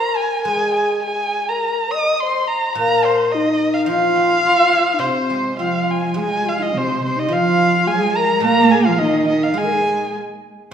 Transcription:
Already playing: A#4 A#5
0.17 G#5
0.40 A#4
0.45 G#3 G#4 G#5
0.75 G#5
1.03 G#4 G#5
1.49 A#4 A#5
1.91 D#5 D#6
2.20 C5 C6
2.48 A#5
2.75 A#2 A#4 A#5
3.05 C5
3.32 D#4 D#5
3.74 F5
3.86 F3 F4 F5
4.16 C4
4.45 F4
4.73 G#4
4.94 D#4
4.99 C3 C4 C5
5.30 G#3
5.57 F3 C4 F4 F5
5.91 G#5
6.14 G#3 G#4
6.20 G#5
6.45 F4 F5
6.59 D#4 F4 D#5
6.67 D#4
6.73 C3 C4
6.77 C5
7.03 C3 C4 C5
7.16 D#4 D#5
7.28 F3 F4
7.33 F5
7.87 G#3 G#4 G#5
8.16 A#4 A#5
8.40 A#2 A#3 A#5
8.45 A#4
8.71 G#4 G#5
8.85 F3 F4 F5
8.99 D#3 D#4 D#5
9.28 D#4 D#5
9.44 F5
9.54 G#3 G#4
9.58 G#5
9.65 A#4
9.73 G#4

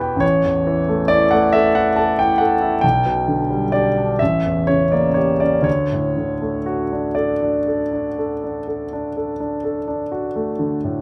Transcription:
Already playing: E2 E3 B3 E4 G4 B4 A5 B5
0.00 G5
0.16 A1 C#5
0.44 E2
0.67 E3
0.89 A3
1.08 E4 D5
1.31 A3 F#5
1.53 A4 E5
1.75 E4 F#5
1.96 A4 A5
2.19 E4 G5
2.38 A4 F#5
2.62 E4
2.81 B1 G5
3.06 B2
3.28 D3
3.51 G3
3.72 G4 D5
3.98 D4
4.19 A1 E5
4.45 E2
4.67 C#3 C#5
4.92 A#3 D5
5.14 G4 C#5
5.40 C#4 D5
5.62 D2 C#5
5.92 A2
6.17 D3
6.41 A3
6.66 F#4
6.92 D4
7.15 A4 D5
7.42 D4
7.67 A4
7.93 D4
8.19 A4
8.44 D4
8.68 A4
8.93 D4
9.17 A4
9.40 D4
9.64 A4
9.88 D4
10.12 F#4
10.36 A3
10.59 D3
10.84 A2

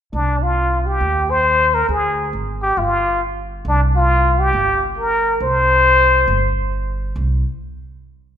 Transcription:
0.13 C2 D4
0.42 F4
0.86 G4
1.01 D#2
1.30 C5
1.74 A#4
1.89 D2 G#4
2.33 G#1
2.62 G4
2.77 G1 F4
3.65 C2 D4
3.96 F4
4.39 G4
4.53 G1
4.98 A#4
5.40 C2 C5
6.28 G1
7.16 C2

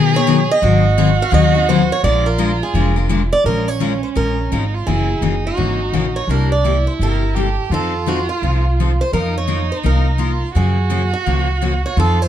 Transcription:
Already playing: B2 D#3 F#3 B3 D#4 G#4 A#4
0.14 B3 D#4 A#4 C#5
0.27 D#3 F#3 B3 D#4 A#4
0.51 D#5
0.62 G#1 D#3 F#3 C4 D#4 F#4 G#4
0.98 D#3 F#3 C4 D#4 G#4
1.22 F5
1.31 D#2 D#3 F#3 C4 D#4 G#4 D#5
1.54 C4 D#4 G#4
1.69 D#3 F#3 C4 D#4 G#4 C5
1.92 C#5
2.04 A#1 F3 G#3 D4 F4 A#4 D5
2.26 A#4
2.38 F3 G#3 D4 F4 A#4
2.63 G#4
2.74 F1 F3 G#3 D4 F4 A#4
2.96 D4 F4 A#4
3.09 F3 G#3 D4 F4 A#4
3.33 D5
3.44 A#1 F3 G#3 C#4 F4 A#4
3.68 C#5
3.80 F3 G#3 C#4 F4 A#4
4.03 C5
4.15 A#1 F3 G#3 C#4 F4 A#4
4.52 G#1 F3 G#3 C#4 D#4 F4 A#4
4.74 F4
4.87 F#1 C#3 E3 A#3 C#4 E4 F#4 G#4
5.21 F#1 C#3 E3 A#3 C#4 D#4 F#4
5.47 F#4
5.57 G#1 C#3 E3 A#3 C#4 F#4
5.92 A#1 C#3 E3 A#3 C#4 F#4
6.16 C#5
6.28 C2 C3 G3 A#3 D4 E4 G4 A#4
6.52 D5
6.64 C3 G3 A#3 E4 G4
6.87 C5
6.99 G1 C3 G3 A#3 E4 G4 A#4
7.35 C3 G3 A#3 E4 G4
7.42 A4
7.70 F2 F3 C4 D#4 F4 A4
7.74 A4
8.06 F3 C4 D#4 F#4 A4
8.29 F4
8.42 C2 F3 C4 D#4 A4
8.80 F3 C4 D#4 A4
9.01 C5
9.12 F2 F3 A#3 D#4 F4 A#4
9.38 C#5
9.47 F3 A#3 D#4 F4 A#4
9.72 C5
9.83 C2 F3 A#3 D#4 F4 A#4
10.18 F3 A#3 D#4 F4 A#4
10.53 F#2 C#3 F3 A#3 C#4 F#4 G#4
10.90 C#3 F3 A#3 C#4 F#4
11.13 F#4
11.26 C#2 C#3 F3 A#3 C#4 F#4
11.61 C#3 F3 A#3 C#4 F#4
11.86 C#5
11.97 F2 F3 C4 D#4 F4 A4
12.22 C5

